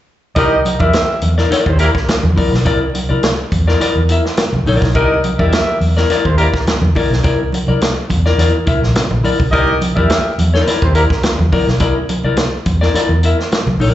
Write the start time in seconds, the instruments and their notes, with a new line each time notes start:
0.36 fingered electric bass C2, horn section D#4 G4 A#4 D#5, clean electric guitar E4 A#4 D5, kick, closed hi-hat, muted conga
0.51 muted clean electric guitar stroke, muted conga
0.65 muted clean electric guitar stroke, closed hi-hat, high conga
0.79 fingered electric bass E2, horn section E4 G4 A#4 E5, clean electric guitar E4 A#4 D5, kick, high conga
0.93 muted clean electric guitar stroke, snare, closed hi-hat, muted conga
1.09 muted clean electric guitar stroke
1.22 fingered electric bass E2, closed hi-hat, high conga
1.38 clean electric guitar E4 A#4 D5, snare
1.51 clean electric guitar E4 A#4 D5, muted fingered electric bass stroke, snare, closed hi-hat
1.66 fingered electric bass D#2, horn section C4 E4 G4 C5, muted clean electric guitar stroke, kick
1.79 horn section A#3 E4 G4 A#4, clean electric guitar E4 A#4 D5, closed hi-hat
1.95 muted clean electric guitar stroke, kick, snare
2.08 muted fingered electric bass stroke, muted clean electric guitar stroke, snare, closed hi-hat
2.23 fingered electric bass E2, muted clean electric guitar stroke, muted conga, high conga, low conga
2.36 clean electric guitar E4 A#4 D5, kick, open hi-hat, high conga, low conga
2.52 fingered electric bass B1, muted clean electric guitar stroke, snare
2.65 fingered electric bass C2, clean electric guitar E4 A#4 D5, kick, closed hi-hat, muted conga
2.81 muted clean electric guitar stroke
2.94 muted clean electric guitar stroke, closed hi-hat, high conga
3.09 fingered electric bass C2, clean electric guitar E4 A#4 D5, high conga
3.23 muted clean electric guitar stroke, snare, closed hi-hat
3.39 muted clean electric guitar stroke
3.52 fingered electric bass E2, kick, closed hi-hat, high conga
3.68 clean electric guitar E4 A#4 D5, snare
3.80 clean electric guitar E4 A#4 D5, muted fingered electric bass stroke, snare, closed hi-hat, muted conga
3.95 fingered electric bass E2, muted clean electric guitar stroke, muted conga
4.09 clean electric guitar E4 A#4 E5, closed hi-hat
4.25 muted clean electric guitar stroke, snare
4.37 muted clean electric guitar stroke, snare, closed hi-hat
4.52 fingered electric bass C2, muted clean electric guitar stroke, muted conga, high conga, low conga
4.65 fingered electric bass A#1, clean electric guitar E4 A#4 D5, open hi-hat, high conga, low conga
4.82 fingered electric bass B1, muted clean electric guitar stroke, kick, snare
4.95 fingered electric bass C2, horn section D#4 G4 A#4 D#5, clean electric guitar E4 A#4 D5, kick, closed hi-hat, muted conga
5.11 muted clean electric guitar stroke
5.24 muted clean electric guitar stroke, closed hi-hat, high conga
5.38 fingered electric bass E2, horn section E4 G4 A#4 E5, clean electric guitar E4 A#4 D5, kick, high conga
5.52 muted clean electric guitar stroke, snare, closed hi-hat
5.68 muted clean electric guitar stroke, muted conga
5.81 fingered electric bass E2, open hi-hat, high conga
5.97 clean electric guitar E4 A#4 D5, snare
6.10 clean electric guitar E4 A#4 D5, muted fingered electric bass stroke, snare, closed hi-hat, muted conga
6.24 fingered electric bass D#2, horn section C4 E4 G4 C5, muted clean electric guitar stroke, kick
6.37 horn section A#3 E4 G4 A#4, clean electric guitar E4 A#4 D5, closed hi-hat
6.54 muted clean electric guitar stroke, kick, snare
6.66 muted fingered electric bass stroke, muted clean electric guitar stroke, snare, closed hi-hat, muted conga
6.82 fingered electric bass E2, muted clean electric guitar stroke, muted conga, high conga, low conga
6.95 clean electric guitar E4 A#4 D5, kick, open hi-hat, high conga, low conga
7.10 fingered electric bass B1, muted clean electric guitar stroke, snare
7.24 fingered electric bass C2, clean electric guitar E4 A#4 D5, kick, closed hi-hat
7.39 muted clean electric guitar stroke
7.52 muted clean electric guitar stroke, closed hi-hat, high conga
7.67 fingered electric bass C2, clean electric guitar E4 A#4 D5, high conga
7.81 muted clean electric guitar stroke, snare, closed hi-hat, muted conga
7.97 muted clean electric guitar stroke
8.10 fingered electric bass E2, kick, closed hi-hat, high conga, low conga
8.25 clean electric guitar E4 A#4 D5, snare
8.38 fingered electric bass E2, clean electric guitar E4 A#4 D5, snare, closed hi-hat
8.54 muted clean electric guitar stroke
8.66 fingered electric bass C2, clean electric guitar E4 A#4 E5, kick, closed hi-hat
8.82 fingered electric bass A#1, muted clean electric guitar stroke, snare
8.95 fingered electric bass C2, muted clean electric guitar stroke, snare, closed hi-hat
9.11 fingered electric bass A#1, muted clean electric guitar stroke, muted conga, high conga, low conga
9.24 clean electric guitar E4 A#4 D5, open hi-hat, high conga, low conga
9.40 fingered electric bass C2, muted clean electric guitar stroke, kick
9.52 fingered electric bass C2, horn section D#4 G4 A#4 D#5, clean electric guitar E4 A#4 D5, kick, closed hi-hat
9.67 muted clean electric guitar stroke, muted conga
9.81 muted clean electric guitar stroke, closed hi-hat, high conga
9.95 fingered electric bass E2, horn section E4 G4 A#4 E5, clean electric guitar E4 A#4 D5, kick, high conga
10.10 muted clean electric guitar stroke, snare, closed hi-hat
10.26 muted clean electric guitar stroke
10.38 fingered electric bass E2, closed hi-hat, high conga
10.54 clean electric guitar E4 A#4 D5, snare
10.67 clean electric guitar E4 A#4 D5, muted fingered electric bass stroke, snare, closed hi-hat
10.82 fingered electric bass D#2, horn section C4 E4 G4 C5, muted clean electric guitar stroke, kick
10.95 horn section A#3 E4 G4 A#4, clean electric guitar E4 A#4 D5, closed hi-hat
11.10 muted clean electric guitar stroke, kick, snare
11.23 muted clean electric guitar stroke, muted fingered electric bass stroke, snare, closed hi-hat, muted conga
11.38 fingered electric bass E2, muted clean electric guitar stroke, muted conga, high conga, low conga
11.52 clean electric guitar E4 A#4 D5, kick, open hi-hat, high conga, low conga
11.67 fingered electric bass B1, muted clean electric guitar stroke, snare
11.80 fingered electric bass C2, clean electric guitar E4 A#4 D5, kick, closed hi-hat, muted conga
11.96 muted clean electric guitar stroke
12.09 muted clean electric guitar stroke, closed hi-hat, high conga
12.23 fingered electric bass C2, clean electric guitar E4 A#4 D5, high conga
12.37 muted clean electric guitar stroke, snare, closed hi-hat, muted conga
12.52 muted clean electric guitar stroke
12.66 fingered electric bass E2, kick, closed hi-hat, high conga
12.81 clean electric guitar E4 A#4 D5, snare
12.94 clean electric guitar E4 A#4 D5, muted fingered electric bass stroke, snare, closed hi-hat, muted conga
13.09 fingered electric bass E2, muted clean electric guitar stroke, muted conga
13.23 clean electric guitar E4 A#4 E5, closed hi-hat
13.39 muted clean electric guitar stroke, snare
13.51 muted clean electric guitar stroke, snare, closed hi-hat, muted conga
13.66 fingered electric bass C2, muted clean electric guitar stroke, muted conga, high conga, low conga
13.79 fingered electric bass A#1, clean electric guitar E4 A#4 D5, open hi-hat, high conga, low conga